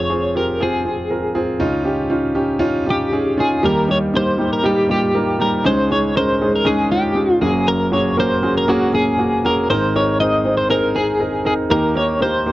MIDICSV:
0, 0, Header, 1, 3, 480
1, 0, Start_track
1, 0, Tempo, 504626
1, 1536, Time_signature, 4, 2, 24, 8
1, 11909, End_track
2, 0, Start_track
2, 0, Title_t, "Clean electric guitar"
2, 0, Program_c, 0, 27
2, 0, Note_on_c, 0, 73, 96
2, 348, Note_off_c, 0, 73, 0
2, 351, Note_on_c, 0, 70, 77
2, 590, Note_off_c, 0, 70, 0
2, 596, Note_on_c, 0, 68, 71
2, 1268, Note_off_c, 0, 68, 0
2, 2763, Note_on_c, 0, 67, 85
2, 3232, Note_off_c, 0, 67, 0
2, 3236, Note_on_c, 0, 68, 79
2, 3473, Note_off_c, 0, 68, 0
2, 3477, Note_on_c, 0, 70, 88
2, 3714, Note_off_c, 0, 70, 0
2, 3720, Note_on_c, 0, 73, 88
2, 3782, Note_off_c, 0, 73, 0
2, 3963, Note_on_c, 0, 72, 100
2, 4304, Note_off_c, 0, 72, 0
2, 4308, Note_on_c, 0, 70, 80
2, 4426, Note_off_c, 0, 70, 0
2, 4429, Note_on_c, 0, 67, 82
2, 4660, Note_off_c, 0, 67, 0
2, 4671, Note_on_c, 0, 67, 91
2, 5151, Note_on_c, 0, 70, 84
2, 5158, Note_off_c, 0, 67, 0
2, 5384, Note_off_c, 0, 70, 0
2, 5388, Note_on_c, 0, 72, 101
2, 5626, Note_off_c, 0, 72, 0
2, 5630, Note_on_c, 0, 73, 90
2, 5867, Note_off_c, 0, 73, 0
2, 5871, Note_on_c, 0, 72, 107
2, 6232, Note_off_c, 0, 72, 0
2, 6236, Note_on_c, 0, 70, 85
2, 6340, Note_on_c, 0, 68, 96
2, 6350, Note_off_c, 0, 70, 0
2, 6576, Note_off_c, 0, 68, 0
2, 6580, Note_on_c, 0, 67, 94
2, 7051, Note_off_c, 0, 67, 0
2, 7055, Note_on_c, 0, 68, 87
2, 7303, Note_off_c, 0, 68, 0
2, 7305, Note_on_c, 0, 70, 99
2, 7542, Note_off_c, 0, 70, 0
2, 7546, Note_on_c, 0, 73, 94
2, 7765, Note_off_c, 0, 73, 0
2, 7799, Note_on_c, 0, 72, 103
2, 8123, Note_off_c, 0, 72, 0
2, 8157, Note_on_c, 0, 70, 84
2, 8270, Note_off_c, 0, 70, 0
2, 8272, Note_on_c, 0, 66, 90
2, 8507, Note_off_c, 0, 66, 0
2, 8510, Note_on_c, 0, 68, 102
2, 8997, Note_off_c, 0, 68, 0
2, 8997, Note_on_c, 0, 70, 93
2, 9226, Note_off_c, 0, 70, 0
2, 9229, Note_on_c, 0, 72, 105
2, 9469, Note_off_c, 0, 72, 0
2, 9476, Note_on_c, 0, 73, 99
2, 9701, Note_off_c, 0, 73, 0
2, 9705, Note_on_c, 0, 75, 103
2, 10055, Note_off_c, 0, 75, 0
2, 10059, Note_on_c, 0, 72, 83
2, 10169, Note_off_c, 0, 72, 0
2, 10183, Note_on_c, 0, 70, 97
2, 10423, Note_on_c, 0, 68, 98
2, 10426, Note_off_c, 0, 70, 0
2, 10894, Note_off_c, 0, 68, 0
2, 10906, Note_on_c, 0, 68, 87
2, 10969, Note_off_c, 0, 68, 0
2, 11142, Note_on_c, 0, 70, 105
2, 11381, Note_off_c, 0, 70, 0
2, 11385, Note_on_c, 0, 73, 94
2, 11603, Note_off_c, 0, 73, 0
2, 11627, Note_on_c, 0, 72, 100
2, 11909, Note_off_c, 0, 72, 0
2, 11909, End_track
3, 0, Start_track
3, 0, Title_t, "Grand piano"
3, 0, Program_c, 1, 0
3, 0, Control_c, 1, 64, 127
3, 0, Note_on_c, 1, 29, 57
3, 0, Note_on_c, 1, 41, 57
3, 0, Note_on_c, 1, 60, 69
3, 0, Note_on_c, 1, 65, 63
3, 0, Note_on_c, 1, 68, 76
3, 91, Note_off_c, 1, 60, 0
3, 91, Note_on_c, 1, 60, 72
3, 93, Note_off_c, 1, 68, 0
3, 93, Note_on_c, 1, 68, 79
3, 94, Note_off_c, 1, 65, 0
3, 94, Note_on_c, 1, 65, 63
3, 320, Note_off_c, 1, 60, 0
3, 321, Note_off_c, 1, 68, 0
3, 322, Note_off_c, 1, 65, 0
3, 335, Note_on_c, 1, 60, 69
3, 336, Note_on_c, 1, 65, 63
3, 338, Note_on_c, 1, 67, 76
3, 562, Note_off_c, 1, 60, 0
3, 562, Note_off_c, 1, 65, 0
3, 563, Note_off_c, 1, 67, 0
3, 574, Note_on_c, 1, 68, 93
3, 577, Note_on_c, 1, 65, 76
3, 580, Note_on_c, 1, 60, 90
3, 793, Note_off_c, 1, 65, 0
3, 795, Note_off_c, 1, 60, 0
3, 802, Note_off_c, 1, 68, 0
3, 808, Note_on_c, 1, 65, 58
3, 810, Note_on_c, 1, 60, 58
3, 818, Note_on_c, 1, 68, 67
3, 1036, Note_off_c, 1, 65, 0
3, 1040, Note_off_c, 1, 60, 0
3, 1044, Note_off_c, 1, 68, 0
3, 1051, Note_on_c, 1, 65, 58
3, 1051, Note_on_c, 1, 70, 74
3, 1054, Note_on_c, 1, 60, 64
3, 1270, Note_off_c, 1, 60, 0
3, 1271, Note_off_c, 1, 65, 0
3, 1281, Note_off_c, 1, 70, 0
3, 1283, Note_on_c, 1, 68, 96
3, 1284, Note_on_c, 1, 60, 90
3, 1285, Note_on_c, 1, 65, 75
3, 1491, Note_off_c, 1, 29, 0
3, 1493, Note_off_c, 1, 41, 0
3, 1505, Note_off_c, 1, 65, 0
3, 1517, Note_off_c, 1, 60, 0
3, 1517, Note_off_c, 1, 68, 0
3, 1518, Note_on_c, 1, 49, 68
3, 1519, Note_on_c, 1, 63, 98
3, 1520, Note_on_c, 1, 37, 63
3, 1520, Note_on_c, 1, 65, 106
3, 1523, Note_on_c, 1, 61, 99
3, 1548, Control_c, 1, 64, 0
3, 1709, Control_c, 1, 64, 127
3, 1737, Note_off_c, 1, 63, 0
3, 1739, Note_off_c, 1, 61, 0
3, 1752, Note_on_c, 1, 63, 82
3, 1753, Note_on_c, 1, 61, 81
3, 1755, Note_off_c, 1, 65, 0
3, 1760, Note_on_c, 1, 67, 93
3, 1982, Note_off_c, 1, 61, 0
3, 1987, Note_off_c, 1, 63, 0
3, 1995, Note_off_c, 1, 67, 0
3, 1995, Note_on_c, 1, 65, 85
3, 1996, Note_on_c, 1, 61, 79
3, 2002, Note_on_c, 1, 63, 80
3, 2218, Note_off_c, 1, 61, 0
3, 2220, Note_off_c, 1, 63, 0
3, 2232, Note_on_c, 1, 61, 78
3, 2233, Note_off_c, 1, 65, 0
3, 2234, Note_on_c, 1, 63, 76
3, 2236, Note_on_c, 1, 67, 93
3, 2452, Note_off_c, 1, 61, 0
3, 2452, Note_off_c, 1, 63, 0
3, 2466, Note_on_c, 1, 61, 103
3, 2466, Note_on_c, 1, 63, 97
3, 2467, Note_on_c, 1, 65, 113
3, 2473, Note_off_c, 1, 67, 0
3, 2708, Note_off_c, 1, 61, 0
3, 2708, Note_off_c, 1, 63, 0
3, 2709, Note_off_c, 1, 65, 0
3, 2723, Note_on_c, 1, 67, 87
3, 2726, Note_on_c, 1, 61, 77
3, 2726, Note_on_c, 1, 63, 75
3, 2957, Note_off_c, 1, 63, 0
3, 2957, Note_off_c, 1, 67, 0
3, 2958, Note_off_c, 1, 61, 0
3, 2972, Note_on_c, 1, 61, 73
3, 2972, Note_on_c, 1, 63, 75
3, 2974, Note_on_c, 1, 68, 91
3, 3193, Note_off_c, 1, 61, 0
3, 3197, Note_off_c, 1, 63, 0
3, 3203, Note_off_c, 1, 68, 0
3, 3207, Note_on_c, 1, 61, 85
3, 3212, Note_on_c, 1, 63, 76
3, 3212, Note_on_c, 1, 65, 93
3, 3410, Note_off_c, 1, 49, 0
3, 3411, Note_off_c, 1, 37, 0
3, 3439, Note_off_c, 1, 61, 0
3, 3439, Note_off_c, 1, 63, 0
3, 3441, Note_off_c, 1, 65, 0
3, 3452, Note_on_c, 1, 39, 57
3, 3453, Note_on_c, 1, 55, 87
3, 3453, Note_on_c, 1, 63, 78
3, 3453, Note_on_c, 1, 67, 98
3, 3454, Note_on_c, 1, 58, 85
3, 3455, Note_on_c, 1, 51, 58
3, 3469, Control_c, 1, 64, 0
3, 3635, Control_c, 1, 64, 127
3, 3676, Note_off_c, 1, 63, 0
3, 3677, Note_off_c, 1, 58, 0
3, 3680, Note_off_c, 1, 55, 0
3, 3681, Note_off_c, 1, 67, 0
3, 3691, Note_on_c, 1, 58, 68
3, 3691, Note_on_c, 1, 63, 68
3, 3695, Note_on_c, 1, 55, 75
3, 3695, Note_on_c, 1, 67, 83
3, 3919, Note_off_c, 1, 58, 0
3, 3921, Note_off_c, 1, 63, 0
3, 3921, Note_off_c, 1, 67, 0
3, 3923, Note_off_c, 1, 55, 0
3, 3933, Note_on_c, 1, 58, 70
3, 3935, Note_on_c, 1, 63, 63
3, 3935, Note_on_c, 1, 67, 81
3, 3937, Note_on_c, 1, 55, 67
3, 4152, Note_off_c, 1, 55, 0
3, 4153, Note_off_c, 1, 63, 0
3, 4154, Note_off_c, 1, 67, 0
3, 4156, Note_off_c, 1, 58, 0
3, 4166, Note_on_c, 1, 55, 75
3, 4167, Note_on_c, 1, 63, 68
3, 4169, Note_on_c, 1, 67, 82
3, 4170, Note_on_c, 1, 58, 66
3, 4390, Note_off_c, 1, 58, 0
3, 4394, Note_off_c, 1, 63, 0
3, 4396, Note_off_c, 1, 55, 0
3, 4396, Note_off_c, 1, 67, 0
3, 4404, Note_on_c, 1, 58, 80
3, 4408, Note_on_c, 1, 63, 81
3, 4410, Note_on_c, 1, 55, 92
3, 4410, Note_on_c, 1, 67, 97
3, 4637, Note_off_c, 1, 55, 0
3, 4637, Note_off_c, 1, 58, 0
3, 4640, Note_off_c, 1, 63, 0
3, 4641, Note_off_c, 1, 67, 0
3, 4651, Note_on_c, 1, 55, 65
3, 4652, Note_on_c, 1, 58, 59
3, 4654, Note_on_c, 1, 65, 78
3, 4656, Note_on_c, 1, 63, 66
3, 4881, Note_off_c, 1, 55, 0
3, 4881, Note_off_c, 1, 58, 0
3, 4883, Note_off_c, 1, 65, 0
3, 4884, Note_off_c, 1, 63, 0
3, 4896, Note_on_c, 1, 55, 66
3, 4898, Note_on_c, 1, 70, 81
3, 4901, Note_on_c, 1, 63, 64
3, 4902, Note_on_c, 1, 58, 63
3, 5112, Note_off_c, 1, 55, 0
3, 5117, Note_off_c, 1, 58, 0
3, 5119, Note_off_c, 1, 63, 0
3, 5125, Note_off_c, 1, 70, 0
3, 5126, Note_on_c, 1, 55, 74
3, 5131, Note_on_c, 1, 58, 66
3, 5133, Note_on_c, 1, 63, 67
3, 5133, Note_on_c, 1, 67, 81
3, 5337, Note_off_c, 1, 39, 0
3, 5338, Note_off_c, 1, 51, 0
3, 5353, Note_off_c, 1, 63, 0
3, 5359, Note_off_c, 1, 55, 0
3, 5361, Note_off_c, 1, 58, 0
3, 5362, Note_off_c, 1, 67, 0
3, 5365, Note_on_c, 1, 61, 80
3, 5367, Note_on_c, 1, 63, 82
3, 5369, Note_on_c, 1, 56, 95
3, 5370, Note_on_c, 1, 49, 59
3, 5371, Note_on_c, 1, 37, 62
3, 5372, Note_on_c, 1, 68, 107
3, 5390, Control_c, 1, 64, 0
3, 5552, Control_c, 1, 64, 127
3, 5598, Note_off_c, 1, 61, 0
3, 5599, Note_off_c, 1, 63, 0
3, 5599, Note_off_c, 1, 68, 0
3, 5600, Note_off_c, 1, 56, 0
3, 5613, Note_on_c, 1, 68, 79
3, 5615, Note_on_c, 1, 56, 71
3, 5620, Note_on_c, 1, 61, 67
3, 5620, Note_on_c, 1, 63, 69
3, 5840, Note_off_c, 1, 61, 0
3, 5841, Note_off_c, 1, 56, 0
3, 5842, Note_off_c, 1, 63, 0
3, 5842, Note_off_c, 1, 68, 0
3, 5854, Note_on_c, 1, 61, 70
3, 5856, Note_on_c, 1, 56, 76
3, 5856, Note_on_c, 1, 63, 67
3, 5857, Note_on_c, 1, 70, 79
3, 6082, Note_off_c, 1, 61, 0
3, 6083, Note_off_c, 1, 56, 0
3, 6083, Note_off_c, 1, 63, 0
3, 6084, Note_off_c, 1, 70, 0
3, 6100, Note_on_c, 1, 63, 67
3, 6101, Note_on_c, 1, 61, 72
3, 6102, Note_on_c, 1, 56, 74
3, 6104, Note_on_c, 1, 68, 83
3, 6309, Note_off_c, 1, 68, 0
3, 6311, Note_off_c, 1, 56, 0
3, 6311, Note_off_c, 1, 63, 0
3, 6312, Note_off_c, 1, 61, 0
3, 6323, Note_on_c, 1, 68, 100
3, 6325, Note_on_c, 1, 56, 97
3, 6325, Note_on_c, 1, 63, 86
3, 6326, Note_on_c, 1, 61, 89
3, 6557, Note_off_c, 1, 68, 0
3, 6558, Note_off_c, 1, 56, 0
3, 6558, Note_off_c, 1, 61, 0
3, 6558, Note_off_c, 1, 63, 0
3, 6575, Note_on_c, 1, 65, 76
3, 6577, Note_on_c, 1, 56, 68
3, 6577, Note_on_c, 1, 63, 65
3, 6580, Note_on_c, 1, 61, 62
3, 6784, Note_off_c, 1, 56, 0
3, 6788, Note_off_c, 1, 61, 0
3, 6793, Note_off_c, 1, 63, 0
3, 6798, Note_on_c, 1, 56, 70
3, 6803, Note_off_c, 1, 65, 0
3, 6803, Note_on_c, 1, 61, 59
3, 6803, Note_on_c, 1, 68, 75
3, 6808, Note_on_c, 1, 63, 62
3, 7015, Note_off_c, 1, 37, 0
3, 7015, Note_off_c, 1, 49, 0
3, 7034, Note_off_c, 1, 56, 0
3, 7037, Note_off_c, 1, 61, 0
3, 7037, Note_off_c, 1, 68, 0
3, 7039, Note_off_c, 1, 63, 0
3, 7050, Note_on_c, 1, 58, 80
3, 7051, Note_on_c, 1, 66, 73
3, 7052, Note_on_c, 1, 61, 76
3, 7053, Note_on_c, 1, 42, 67
3, 7054, Note_on_c, 1, 30, 66
3, 7054, Note_on_c, 1, 68, 85
3, 7069, Control_c, 1, 64, 0
3, 7225, Control_c, 1, 64, 127
3, 7507, Note_off_c, 1, 58, 0
3, 7508, Note_off_c, 1, 61, 0
3, 7508, Note_off_c, 1, 66, 0
3, 7509, Note_off_c, 1, 68, 0
3, 7531, Note_on_c, 1, 66, 74
3, 7532, Note_on_c, 1, 58, 78
3, 7532, Note_on_c, 1, 61, 72
3, 7534, Note_on_c, 1, 68, 83
3, 7757, Note_off_c, 1, 58, 0
3, 7759, Note_off_c, 1, 66, 0
3, 7761, Note_off_c, 1, 61, 0
3, 7762, Note_off_c, 1, 68, 0
3, 7771, Note_on_c, 1, 58, 80
3, 7772, Note_on_c, 1, 70, 84
3, 7773, Note_on_c, 1, 66, 65
3, 7779, Note_on_c, 1, 61, 69
3, 8001, Note_off_c, 1, 58, 0
3, 8001, Note_off_c, 1, 70, 0
3, 8002, Note_off_c, 1, 66, 0
3, 8004, Note_off_c, 1, 61, 0
3, 8017, Note_on_c, 1, 58, 74
3, 8018, Note_on_c, 1, 66, 71
3, 8018, Note_on_c, 1, 68, 90
3, 8019, Note_on_c, 1, 61, 68
3, 8242, Note_off_c, 1, 58, 0
3, 8242, Note_off_c, 1, 68, 0
3, 8244, Note_off_c, 1, 61, 0
3, 8244, Note_off_c, 1, 66, 0
3, 8256, Note_on_c, 1, 68, 105
3, 8257, Note_on_c, 1, 58, 90
3, 8260, Note_on_c, 1, 61, 93
3, 8265, Note_on_c, 1, 66, 90
3, 8482, Note_off_c, 1, 58, 0
3, 8483, Note_off_c, 1, 68, 0
3, 8485, Note_off_c, 1, 61, 0
3, 8487, Note_off_c, 1, 66, 0
3, 8496, Note_on_c, 1, 58, 69
3, 8497, Note_on_c, 1, 68, 77
3, 8499, Note_on_c, 1, 61, 63
3, 8503, Note_on_c, 1, 66, 67
3, 8721, Note_off_c, 1, 58, 0
3, 8724, Note_off_c, 1, 68, 0
3, 8725, Note_off_c, 1, 61, 0
3, 8727, Note_off_c, 1, 66, 0
3, 8736, Note_on_c, 1, 58, 73
3, 8738, Note_on_c, 1, 68, 81
3, 8744, Note_on_c, 1, 61, 62
3, 8744, Note_on_c, 1, 66, 68
3, 8936, Note_off_c, 1, 30, 0
3, 8936, Note_off_c, 1, 42, 0
3, 8963, Note_off_c, 1, 58, 0
3, 8964, Note_off_c, 1, 68, 0
3, 8967, Note_off_c, 1, 61, 0
3, 8967, Note_off_c, 1, 66, 0
3, 8984, Note_on_c, 1, 61, 68
3, 8986, Note_on_c, 1, 58, 76
3, 8988, Note_on_c, 1, 66, 71
3, 8990, Note_on_c, 1, 68, 88
3, 9207, Note_off_c, 1, 61, 0
3, 9208, Note_off_c, 1, 58, 0
3, 9209, Note_off_c, 1, 66, 0
3, 9210, Note_off_c, 1, 68, 0
3, 9223, Note_on_c, 1, 63, 81
3, 9224, Note_on_c, 1, 68, 81
3, 9226, Note_on_c, 1, 32, 62
3, 9226, Note_on_c, 1, 70, 107
3, 9228, Control_c, 1, 64, 0
3, 9231, Note_on_c, 1, 44, 64
3, 9231, Note_on_c, 1, 60, 90
3, 9418, Control_c, 1, 64, 127
3, 9446, Note_off_c, 1, 63, 0
3, 9447, Note_off_c, 1, 68, 0
3, 9448, Note_off_c, 1, 70, 0
3, 9450, Note_off_c, 1, 60, 0
3, 9466, Note_on_c, 1, 63, 71
3, 9467, Note_on_c, 1, 60, 80
3, 9470, Note_on_c, 1, 68, 69
3, 9470, Note_on_c, 1, 70, 90
3, 9687, Note_off_c, 1, 63, 0
3, 9688, Note_off_c, 1, 60, 0
3, 9690, Note_off_c, 1, 68, 0
3, 9690, Note_off_c, 1, 70, 0
3, 9706, Note_on_c, 1, 60, 78
3, 9706, Note_on_c, 1, 63, 69
3, 9707, Note_on_c, 1, 68, 64
3, 9711, Note_on_c, 1, 72, 77
3, 9924, Note_off_c, 1, 60, 0
3, 9925, Note_off_c, 1, 63, 0
3, 9925, Note_off_c, 1, 72, 0
3, 9928, Note_off_c, 1, 68, 0
3, 9938, Note_on_c, 1, 60, 69
3, 9939, Note_on_c, 1, 63, 65
3, 9940, Note_on_c, 1, 72, 77
3, 9942, Note_on_c, 1, 68, 65
3, 10157, Note_off_c, 1, 60, 0
3, 10160, Note_off_c, 1, 68, 0
3, 10161, Note_off_c, 1, 63, 0
3, 10164, Note_off_c, 1, 72, 0
3, 10172, Note_on_c, 1, 60, 94
3, 10174, Note_on_c, 1, 68, 86
3, 10176, Note_on_c, 1, 63, 87
3, 10179, Note_on_c, 1, 70, 100
3, 10400, Note_off_c, 1, 60, 0
3, 10402, Note_off_c, 1, 63, 0
3, 10402, Note_off_c, 1, 68, 0
3, 10404, Note_off_c, 1, 70, 0
3, 10415, Note_on_c, 1, 60, 61
3, 10416, Note_on_c, 1, 68, 61
3, 10419, Note_on_c, 1, 70, 74
3, 10422, Note_on_c, 1, 63, 60
3, 10638, Note_off_c, 1, 60, 0
3, 10638, Note_off_c, 1, 63, 0
3, 10639, Note_off_c, 1, 68, 0
3, 10641, Note_off_c, 1, 70, 0
3, 10652, Note_on_c, 1, 60, 66
3, 10652, Note_on_c, 1, 63, 61
3, 10654, Note_on_c, 1, 68, 66
3, 10655, Note_on_c, 1, 70, 75
3, 10877, Note_off_c, 1, 60, 0
3, 10878, Note_off_c, 1, 63, 0
3, 10878, Note_off_c, 1, 70, 0
3, 10880, Note_off_c, 1, 68, 0
3, 10891, Note_on_c, 1, 60, 70
3, 10892, Note_on_c, 1, 63, 68
3, 10893, Note_on_c, 1, 70, 76
3, 10894, Note_on_c, 1, 68, 68
3, 11101, Note_off_c, 1, 32, 0
3, 11104, Note_off_c, 1, 44, 0
3, 11116, Note_off_c, 1, 70, 0
3, 11119, Note_off_c, 1, 63, 0
3, 11120, Note_off_c, 1, 60, 0
3, 11121, Note_off_c, 1, 68, 0
3, 11129, Note_on_c, 1, 58, 92
3, 11130, Note_on_c, 1, 39, 61
3, 11130, Note_on_c, 1, 70, 90
3, 11131, Note_on_c, 1, 51, 61
3, 11132, Note_on_c, 1, 67, 85
3, 11133, Note_on_c, 1, 63, 82
3, 11148, Control_c, 1, 64, 0
3, 11314, Control_c, 1, 64, 127
3, 11352, Note_off_c, 1, 58, 0
3, 11355, Note_off_c, 1, 67, 0
3, 11358, Note_off_c, 1, 63, 0
3, 11358, Note_off_c, 1, 70, 0
3, 11366, Note_on_c, 1, 58, 78
3, 11369, Note_on_c, 1, 67, 67
3, 11372, Note_on_c, 1, 63, 71
3, 11372, Note_on_c, 1, 70, 86
3, 11594, Note_off_c, 1, 58, 0
3, 11596, Note_off_c, 1, 70, 0
3, 11599, Note_off_c, 1, 63, 0
3, 11599, Note_off_c, 1, 67, 0
3, 11608, Note_on_c, 1, 58, 71
3, 11610, Note_on_c, 1, 70, 84
3, 11613, Note_on_c, 1, 63, 64
3, 11613, Note_on_c, 1, 67, 68
3, 11838, Note_off_c, 1, 58, 0
3, 11839, Note_off_c, 1, 63, 0
3, 11839, Note_off_c, 1, 67, 0
3, 11839, Note_off_c, 1, 70, 0
3, 11853, Note_on_c, 1, 58, 72
3, 11853, Note_on_c, 1, 63, 64
3, 11853, Note_on_c, 1, 67, 69
3, 11855, Note_on_c, 1, 72, 81
3, 11909, Note_off_c, 1, 39, 0
3, 11909, Note_off_c, 1, 51, 0
3, 11909, Note_off_c, 1, 58, 0
3, 11909, Note_off_c, 1, 63, 0
3, 11909, Note_off_c, 1, 67, 0
3, 11909, Note_off_c, 1, 72, 0
3, 11909, End_track
0, 0, End_of_file